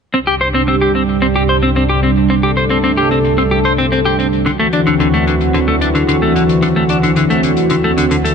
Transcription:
0.13 C2 C3 G3 C4 D4 G4, closed hi-hat
0.27 G4
0.40 C5, closed hi-hat
0.54 C4, closed hi-hat
0.68 C4, closed hi-hat
0.81 G4, closed hi-hat
0.94 C4, closed hi-hat
1.08 closed hi-hat
1.22 C4, closed hi-hat
1.36 G4
1.49 C5, closed hi-hat
1.62 C4, closed hi-hat
1.75 C4, closed hi-hat
1.89 G4
2.03 C4, closed hi-hat
2.16 closed hi-hat
2.30 C4 A4, closed hi-hat
2.43 G4
2.57 C5, closed hi-hat
2.69 C4, closed hi-hat
2.84 C4, closed hi-hat
2.97 G4, closed hi-hat
3.11 C4, closed hi-hat
3.24 closed hi-hat
3.38 C4, closed hi-hat
3.51 G4
3.65 C5, closed hi-hat
3.78 C4, closed hi-hat
3.92 C4, closed hi-hat
4.05 G4
4.19 C4, closed hi-hat
4.33 closed hi-hat
4.46 D2 D3 E3 C4 F#4, closed hi-hat
4.60 A3
4.73 D4, closed hi-hat
4.87 D3, closed hi-hat
5.00 D3, closed hi-hat
5.14 A3, closed hi-hat
5.27 D3, closed hi-hat
5.41 closed hi-hat
5.54 D3, closed hi-hat
5.68 A3
5.81 D4, closed hi-hat
5.95 D3, closed hi-hat
6.08 D3, closed hi-hat
6.22 A3
6.36 D3, closed hi-hat
6.49 closed hi-hat
6.62 D3, closed hi-hat
6.76 A3
6.89 D4, closed hi-hat
7.03 D3, closed hi-hat
7.16 D3, closed hi-hat
7.30 A3, closed hi-hat
7.43 D3, closed hi-hat
7.57 closed hi-hat
7.70 D3, closed hi-hat
7.84 A3
7.98 D3, closed hi-hat
8.11 D3, closed hi-hat
8.25 A3, closed hi-hat

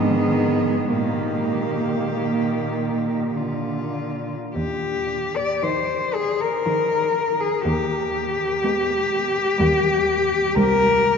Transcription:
Already playing: G#2 D#3 B3 G#4
0.88 A#2 D#3 A#3 G4
3.36 D3 F4
4.55 D#2 G4
5.36 D5
5.63 D#3 D#4 C5
6.14 G#4
6.41 A#4
6.66 D#3 D#4
7.40 G#4
7.64 D#2 G4
8.63 G#3 B3
9.59 D#2 G3 A#3
10.55 C2 A#4

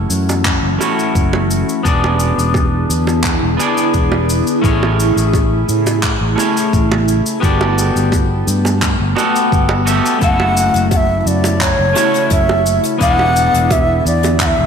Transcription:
Already playing: E3 A3 C#4 E4 F#4 C#5
0.10 F#2, cabasa
0.29 high bongo, cabasa
0.45 kick, clap, cabasa
0.63 F#1
0.78 A3 C#4 E4 F#4, high bongo, cabasa
0.83 C#5
0.99 cabasa
1.15 F#1, kick, cabasa
1.33 high bongo
1.51 cabasa
1.69 cabasa
1.83 E1 D3 B3 D4 E4 G#4, kick, cabasa
1.88 D5
2.04 high bongo
2.20 cabasa
2.38 E1, cabasa
2.54 kick, high bongo, cabasa
2.89 E2, cabasa
3.07 high bongo, cabasa
3.24 kick, clap, cabasa
3.43 E1
3.57 B3 D4 E4 G#4, high bongo, cabasa
3.62 D5
3.78 cabasa
3.94 E1, kick, cabasa
4.12 high bongo
4.29 cabasa
4.47 cabasa
4.62 A1 C#3 A3 C#4 E4 G#4, kick, cabasa
4.66 C#5
4.83 high bongo
5.00 cabasa
5.16 A1, cabasa
5.33 kick, high bongo, cabasa
5.69 A2, cabasa
5.87 high bongo, cabasa
6.03 kick, clap, cabasa
6.21 A1
6.35 A3 C#4 E4 G#4, high bongo
6.39 C#5, cabasa
6.57 cabasa
6.73 A1, kick, cabasa
6.92 high bongo
7.08 cabasa
7.26 cabasa
7.40 G1 B3 F#4 G4 A4, kick, cabasa
7.45 D5
7.61 high bongo
7.78 cabasa
7.96 G1, cabasa
8.12 kick, high bongo, cabasa
8.47 G2, cabasa
8.65 high bongo, cabasa
8.82 kick, clap, cabasa
9.00 G1
9.15 B3 F#4 G4 A4 F#5, high bongo, cabasa
9.36 cabasa
9.52 G1, kick, cabasa
9.69 high bongo
9.85 B3 F#4 G4 A4 E5, cabasa
10.06 cabasa
10.19 F#1 C#3 A3 E4 F#4, kick, closed hi-hat, cabasa
10.23 E5 F#5
10.40 high bongo
10.57 cabasa
10.74 F#1, closed hi-hat, cabasa
10.91 F#5, kick, closed hi-hat, high bongo, cabasa
10.96 E5
11.21 E5
11.26 F#2 D5, cabasa
11.44 closed hi-hat, high bongo, cabasa
11.61 C#5, kick, clap, closed hi-hat, cabasa
11.79 F#1
11.93 A3 C#4 E4 F#4, closed hi-hat, high bongo
11.97 C#5, cabasa
12.14 closed hi-hat, cabasa
12.30 F#1 E5, kick, closed hi-hat, cabasa
12.49 high bongo
12.66 cabasa
12.84 closed hi-hat, cabasa
12.98 E1 D3 B3 D4 E4 G#4 F#5, kick, closed hi-hat, cabasa
13.03 D5
13.19 high bongo
13.36 cabasa
13.54 E1, closed hi-hat, cabasa
13.71 E5, kick, closed hi-hat, high bongo, cabasa
14.05 E2 D5, cabasa
14.23 closed hi-hat, high bongo, cabasa
14.40 F#5, kick, clap, closed hi-hat, cabasa
14.46 E5
14.58 E1

